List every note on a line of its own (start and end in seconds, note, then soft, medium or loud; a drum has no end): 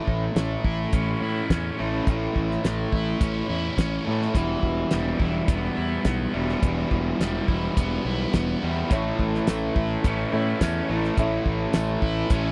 0.00 1.22 A2 medium
0.00 1.77 A2 medium
0.00 1.81 E3 medium
0.00 1.78 A3 medium
0.00 1.78 C#4 medium
0.00 1.79 E4 loud
0.07 0.27 A1 medium
0.07 kick medium
0.36 0.56 A1 medium
0.36 1.77 A3 medium
0.36 snare loud
0.36 closed hi-hat medium
0.64 0.84 A1 medium
0.64 1.22 E4 medium
0.64 kick medium
0.93 1.13 A1 medium
0.93 1.49 C#4 medium
0.93 kick loud
0.93 closed hi-hat medium
1.21 1.41 A2 medium
1.21 2.92 E4 medium
1.50 1.70 E2 medium
1.50 2.93 C#4 medium
1.50 kick medium
1.50 snare loud
1.50 closed hi-hat medium
1.78 1.99 A1 medium
1.78 2.07 A2 medium
1.78 2.08 E3 medium
1.78 2.63 A3 medium
1.78 2.07 A3 medium
1.78 2.06 C#4 medium
1.78 2.10 E4 medium
2.07 2.27 A1 medium
2.07 3.51 A2 medium
2.07 4.06 A2 medium
2.07 4.08 E3 medium
2.07 4.06 A3 medium
2.07 4.06 C#4 medium
2.07 4.07 E4 loud
2.07 kick medium
2.07 closed hi-hat soft
2.36 2.56 A1 medium
2.36 kick medium
2.51 snare soft
2.64 2.84 A1 medium
2.64 4.03 A3 medium
2.64 snare medium
2.64 closed hi-hat medium
2.92 3.13 A1 medium
2.92 3.49 E4 medium
2.92 kick medium
3.20 3.41 A1 medium
3.20 3.76 C#4 medium
3.20 kick loud
3.20 closed hi-hat medium
3.49 3.69 E2 medium
3.49 5.19 E4 medium
3.77 3.97 A1 medium
3.77 4.35 C#4 medium
3.77 kick medium
3.77 snare loud
3.77 closed hi-hat medium
4.04 4.27 A2 medium
4.04 4.34 A3 medium
4.04 4.35 A3 medium
4.04 4.34 C#4 medium
4.04 4.37 E4 medium
4.09 4.35 A2 medium
4.09 4.35 E3 medium
4.22 snare soft
4.34 4.55 E1 medium
4.34 6.33 E2 medium
4.34 6.33 B2 medium
4.34 6.63 E3 medium
4.34 6.35 E3 medium
4.34 6.33 G3 medium
4.34 6.33 B3 medium
4.34 6.33 E4 medium
4.34 kick medium
4.34 closed hi-hat medium
4.63 4.83 E1 medium
4.63 kick medium
4.91 5.13 E1 medium
4.91 6.33 G3 medium
4.91 snare medium
4.91 closed hi-hat medium
5.19 5.40 E1 medium
5.19 5.76 E4 medium
5.19 kick medium
5.48 5.68 E1 medium
5.48 6.04 B3 medium
5.48 kick loud
5.48 closed hi-hat medium
5.77 5.97 E2 medium
5.77 7.48 E4 medium
6.05 6.25 B1 medium
6.05 7.48 B3 medium
6.05 kick medium
6.05 snare medium
6.05 closed hi-hat medium
6.33 6.54 E1 medium
6.33 6.60 E2 medium
6.33 6.60 B2 medium
6.33 6.62 E3 medium
6.33 7.19 G3 medium
6.33 6.62 G3 medium
6.33 6.61 B3 medium
6.33 6.63 E4 medium
6.49 snare soft
6.61 6.83 E1 medium
6.61 8.60 E2 medium
6.61 8.60 B2 medium
6.61 8.63 E3 medium
6.61 10.13 E3 medium
6.61 8.61 G3 medium
6.61 8.61 B3 medium
6.61 8.62 E4 loud
6.61 kick loud
6.61 closed hi-hat medium
6.91 7.11 E1 medium
6.91 kick medium
7.20 7.39 E1 medium
7.20 8.61 G3 medium
7.20 snare medium
7.20 closed hi-hat medium
7.48 7.68 E1 medium
7.48 8.06 E4 medium
7.48 kick medium
7.77 7.97 E1 medium
7.77 8.33 B3 medium
7.77 kick loud
7.77 closed hi-hat medium
8.05 8.25 B1 medium
8.05 9.76 E4 medium
8.33 8.54 E1 loud
8.33 8.91 B3 medium
8.33 kick medium
8.33 snare loud
8.33 closed hi-hat medium
8.62 8.82 E2 medium
8.62 8.90 E2 medium
8.62 8.90 B2 medium
8.62 8.91 E3 medium
8.62 8.91 G3 medium
8.62 8.89 G3 medium
8.62 8.89 B3 medium
8.62 8.92 E4 medium
8.90 9.11 A1 medium
8.90 10.04 A2 medium
8.90 10.88 A2 medium
8.90 10.33 A2 medium
8.90 10.88 E3 medium
8.90 10.07 E3 medium
8.90 10.88 A3 medium
8.90 10.09 A3 medium
8.90 10.89 C#4 medium
8.90 9.82 E4 medium
8.90 10.88 E4 medium
8.90 9.82 A4 medium
8.90 9.82 C#5 medium
8.90 kick loud
8.90 closed hi-hat medium
9.19 9.39 A1 medium
9.19 kick medium
9.35 snare soft
9.47 9.68 A1 medium
9.47 10.88 A3 medium
9.47 snare loud
9.47 closed hi-hat medium
9.47 tambourine medium
9.76 9.96 A1 medium
9.76 10.32 E4 medium
9.76 kick medium
10.04 10.24 A1 medium
10.04 11.16 A2 medium
10.04 11.18 E3 medium
10.04 10.60 C#4 medium
10.04 kick loud
10.04 closed hi-hat medium
10.09 11.19 A3 medium
10.33 10.53 A2 medium
10.33 11.01 E4 medium
10.33 11.75 E4 medium
10.33 11.01 A4 medium
10.33 11.02 C#5 medium
10.61 10.81 E2 medium
10.61 12.03 C#4 medium
10.61 kick medium
10.61 snare loud
10.61 closed hi-hat medium
10.61 tambourine medium
10.89 11.09 A1 medium
10.89 11.15 A2 medium
10.89 11.16 E3 medium
10.89 11.73 A3 medium
10.89 11.16 A3 medium
10.89 11.16 C#4 medium
10.89 11.16 E4 medium
11.04 snare soft
11.17 11.37 A1 loud
11.17 12.52 A2 medium
11.17 12.30 A2 medium
11.17 12.52 A2 medium
11.17 12.52 E3 medium
11.17 12.31 E3 medium
11.17 12.52 A3 medium
11.17 12.52 C#4 medium
11.17 12.09 E4 medium
11.17 12.52 E4 medium
11.17 12.09 A4 medium
11.17 12.10 C#5 medium
11.17 kick medium
11.17 closed hi-hat medium
11.22 12.32 A3 medium
11.46 11.66 A1 medium
11.46 kick medium
11.73 11.95 A1 medium
11.73 12.52 A3 medium
11.73 snare loud
11.73 closed hi-hat medium
11.73 tambourine medium
12.02 12.22 A1 medium
12.02 12.52 E4 medium
12.02 kick medium
12.30 12.50 A1 loud
12.30 12.52 A2 medium
12.30 12.52 E3 medium
12.30 12.52 C#4 medium
12.30 kick loud
12.30 closed hi-hat medium
12.36 12.52 A3 medium